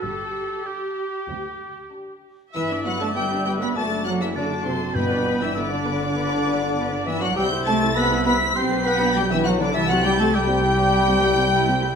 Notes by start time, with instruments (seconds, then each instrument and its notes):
0.02 double bass section G1, cello section G2, viola section G4, violin section A4, oboe A4
0.66 violin section D4 G4, oboe G4
1.29 cello section D2, double bass section D2
1.92 violin section D4
2.54 double bass section G1, cello section E3, french horn section E3, viola section B3 B4, clarinet E4, oboe E5, violin section E5 E6, flute E5
2.70 viola section D4 D5
2.85 cello section F#3, french horn section F#3, viola section B3 B4, clarinet F#4, flute F#5, violin section F#5 F#6
3.00 cello section A3, french horn section A3, viola section D4 D5, clarinet A4, flute A5, violin section A5 A6
3.15 french horn section G3, cello section G3, viola section B3 B4, clarinet G4, flute G5, violin section G5 G6
3.31 viola section D4 D5
3.45 cello section G3, french horn section G3, viola section B3 B4, clarinet G4, violin section G5 G6, flute G5
3.61 french horn section B3, cello section B3, viola section D4 D5, clarinet B4, violin section B5 B6, flute B5
3.76 double bass section F#1, french horn section A3, cello section A3, viola section F#4 A4, clarinet A4, oboe D5, flute A5, violin section A5 A6
3.91 viola section D4 F#4
4.05 french horn section F#3, cello section F#3, viola section F#4 A4, clarinet F#4, violin section F#5 F#6, flute F#5
4.20 french horn section E3, cello section E3, viola section D4 F#4, clarinet E4, violin section E5 E6, flute E5
4.34 cello section D3, french horn section D3, clarinet D4, viola section F#4 A4, flute D5, violin section D5 D6, oboe A5
4.50 viola section D4 F#4
4.65 french horn section C3, cello section C3, clarinet C4, viola section F#4 A4, violin section C5 C6, flute C5
4.81 viola section D4 F#4
4.94 double bass section G1, timpani G2, cello section B2, french horn section B2, viola section B3 B4, clarinet B3, flute B4, violin section B4 B5, oboe G5
5.10 viola section D4 D5
5.26 viola section B3 B4
5.41 french horn section E3, cello section E3, viola section D4 D5, clarinet E4, violin section E5 E6, flute E5
5.55 cello section D3, french horn section D3, viola section B3 B4, clarinet D4, violin section D5 D6, flute D5, oboe E5
5.71 viola section D4 D5
5.85 viola section B3 B4, oboe D5
6.00 viola section D4 D5
6.16 viola section B3 B4
6.31 viola section D4 D5
6.45 viola section B3 B4
6.61 viola section D4 D5
6.76 viola section B3 B4
6.91 viola section D4 D5
7.06 french horn section E3, cello section E3, viola section B3 B4, clarinet E4, flute E5, violin section E5 E6
7.21 french horn section F#3, cello section F#3, viola section D4 D5, clarinet F#4, flute F#5, violin section F#5 F#6
7.36 double bass section C2, cello section G3, french horn section G3, viola section C4 G4, clarinet G4, oboe E5, flute G5, violin section G5 G6
7.51 viola section E4 C5
7.65 cello section A3, french horn section A3, viola section C4 G4, clarinet A4, flute A5, violin section A5 A6
7.82 viola section E4 C5
7.94 cello section B3, french horn section B3, viola section C4 G4, clarinet B4, violin section B5 B6, flute B5
8.10 viola section E4 C5
8.24 cello section B3, french horn section B3, viola section C4 G4, clarinet B4, violin section B5 B6, flute B5
8.41 viola section E4 C5
8.55 double bass section B1, viola section B3 G4, french horn section C4, cello section C4, clarinet C5, oboe G5, flute C6, violin section C6 C7
8.70 viola section D4 B4
8.84 viola section B3 G4, french horn section B3, cello section B3, clarinet B4, flute B5, violin section B5 B6
9.00 viola section D4 B4
9.15 french horn section G3, cello section G3, viola section B3 G4, clarinet G4, flute G5, violin section G5 G6
9.30 cello section E3, french horn section E3, viola section D4 B4, clarinet E4, flute E5, violin section E5 E6
9.43 french horn section F#3, cello section F#3, viola section B3 G4, clarinet F#4, flute F#5, violin section F#5 F#6
9.58 french horn section D3, cello section D3, viola section D4 B4, clarinet D4, flute D5, violin section D5 D6
9.73 double bass section C2, french horn section E3, cello section E3, viola section G3 E4, clarinet E4, flute E5, violin section E5 E6, oboe A5
9.88 french horn section F#3, cello section F#3, viola section C4 G4, clarinet F#4, flute F#5, violin section F#5 F#6
10.03 viola section G3 E4, cello section G3, french horn section G3, clarinet G4, violin section G5 G6, flute G5
10.18 french horn section A3, cello section A3, viola section C4 G4, clarinet A4, violin section A5 A6, flute A5
10.33 viola section G3 E4, french horn section G3, cello section G3, clarinet G4, violin section G5 G6, flute G5, oboe G5
10.48 viola section C4 G4
10.62 viola section G3 E4
10.78 viola section C4 G4
10.92 viola section G3 E4
11.06 viola section C4 G4
11.22 viola section G3 E4
11.36 viola section C4 G4
11.51 viola section G3 E4
11.67 viola section C4 G4
11.81 viola section G3 E4